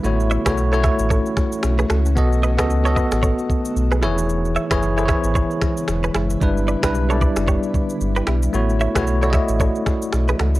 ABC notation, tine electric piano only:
X:1
M:4/4
L:1/16
Q:"Swing 16ths" 1/4=113
K:Alyd
V:1 name="Tine electric piano"
[A,EFc]3 [A,EFc]2 [A,EFc]6- [A,EFc] z4 | [B,FAd]3 [B,FAd]2 [B,FAd]6- [B,FAd] z2 [E,EGc]2- | [E,EGc]3 [E,EGc]2 [E,EG=c^c]6- [E,EG=c^c] z4 | [=G,=DEB]3 [G,DEB]2 [G,DE=d]6- [G,DEd] z4 |
[A,EFc]3 [A,EFc]2 [A,EF=d^d]6- [A,EF=d^d] z4 |]